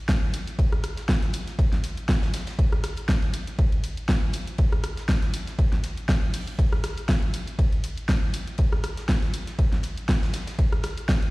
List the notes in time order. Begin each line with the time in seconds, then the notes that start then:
0.09 kick, snare, ride
0.34 open hi-hat, ride
0.47 closed hi-hat
0.59 kick, ride
0.72 cross-stick, closed hi-hat
0.84 cross-stick, open hi-hat, ride
0.97 snare, closed hi-hat
1.09 kick, snare, ride
1.22 snare, closed hi-hat
1.33 open hi-hat, ride
1.48 snare, closed hi-hat
1.59 kick, ride
1.73 snare, closed hi-hat
1.83 snare, open hi-hat, ride
1.97 closed hi-hat
2.08 kick, snare, ride
2.22 snare, ride
2.34 snare, open hi-hat, ride
2.47 snare, closed hi-hat, ride
2.59 kick, ride
2.72 cross-stick, closed hi-hat
2.83 cross-stick, snare, open hi-hat, ride
2.97 closed hi-hat, ride
3.08 kick, snare, ride
3.22 closed hi-hat
3.33 open hi-hat, ride
3.47 closed hi-hat
3.58 kick, ride
3.72 closed hi-hat, ride
3.84 open hi-hat, ride
3.97 closed hi-hat
4.09 kick, snare, ride
4.33 open hi-hat, ride
4.47 closed hi-hat
4.58 kick, ride
4.72 cross-stick, closed hi-hat
4.84 cross-stick, open hi-hat, ride
4.97 snare, closed hi-hat
5.08 kick, snare, ride
5.22 snare, closed hi-hat
5.34 open hi-hat, ride
5.47 snare, closed hi-hat
5.59 kick, ride
5.72 snare, closed hi-hat
5.84 snare, open hi-hat, ride
5.97 closed hi-hat
6.09 kick, snare, ride
6.34 open hi-hat
6.47 closed hi-hat
6.59 kick, ride
6.72 cross-stick, closed hi-hat
6.84 cross-stick, snare, open hi-hat, ride
6.97 closed hi-hat, ride
7.08 kick, snare, ride
7.23 closed hi-hat
7.34 open hi-hat, ride
7.47 closed hi-hat
7.59 kick, ride
7.72 closed hi-hat, ride
7.84 open hi-hat, ride
7.97 closed hi-hat
8.09 kick, snare, ride
8.34 open hi-hat, ride
8.47 closed hi-hat
8.58 kick, ride
8.72 cross-stick, closed hi-hat
8.84 cross-stick, open hi-hat, ride
8.97 snare, closed hi-hat
9.08 kick, snare, ride
9.22 snare, closed hi-hat
9.34 open hi-hat, ride
9.47 snare, closed hi-hat
9.59 kick, ride
9.72 snare, closed hi-hat
9.83 snare, open hi-hat, ride
9.97 closed hi-hat
10.09 kick, snare, ride
10.23 snare, ride
10.33 snare, open hi-hat, ride
10.47 snare, closed hi-hat, ride
10.58 kick, ride
10.72 cross-stick, closed hi-hat
10.83 cross-stick, snare, open hi-hat, ride
10.97 closed hi-hat, ride
11.09 kick, snare, ride
11.22 closed hi-hat